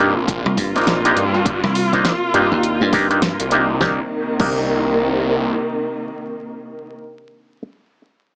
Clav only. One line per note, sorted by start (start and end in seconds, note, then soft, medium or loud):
0.00 0.15 A#3 medium
0.00 0.15 D4 medium
0.00 0.15 D#4 medium
0.00 0.15 G4 loud
0.75 1.00 A#3 medium
0.75 1.00 D4 medium
0.75 1.00 D#4 medium
0.75 1.00 C5 medium
1.05 1.24 A#3 medium
1.05 1.24 D4 medium
1.05 1.24 D#4 medium
1.05 1.24 G4 loud
1.93 2.13 A#3 loud
1.93 2.13 D4 medium
1.93 2.13 D#4 medium
1.93 2.13 C5 loud
2.34 2.90 A#3 loud
2.34 2.90 D4 medium
2.34 2.90 D#4 medium
2.34 2.90 G4 loud
2.93 3.08 A#3 loud
2.93 3.08 D4 loud
2.93 3.08 D#4 loud
2.93 3.08 G4 loud
3.10 3.21 A#3 medium
3.10 3.21 D4 medium
3.10 3.21 D#4 medium
3.10 3.21 G4 medium
3.52 3.80 A#3 medium
3.52 3.80 D4 medium
3.52 3.80 D#4 medium
3.52 3.80 G4 loud
3.81 4.00 A#3 medium
3.81 4.00 D4 medium
3.81 4.00 D#4 medium
3.81 4.00 G4 loud
4.40 7.62 A#3 medium
4.40 7.62 D4 medium
4.40 7.62 D#4 medium
4.40 7.62 G4 loud